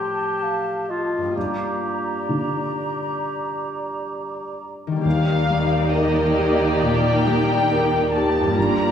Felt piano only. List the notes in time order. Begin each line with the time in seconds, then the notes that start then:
Already playing: A2 F3
1.37 G2
2.29 D3
5.05 D#2
5.50 G3
5.94 A#4
6.38 G4
6.82 A#2
7.26 G3
7.72 A#4
8.15 G4
8.58 G2